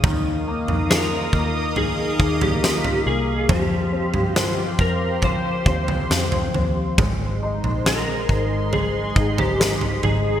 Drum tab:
SD |----o-------o---|----o-------o---|----o-------o---|
FT |o--o----o--o-o--|o--o----o--o-oo-|o--o----o--o-oo-|
BD |o-----o---o-----|o-----o-o-o-----|o-----o---o-----|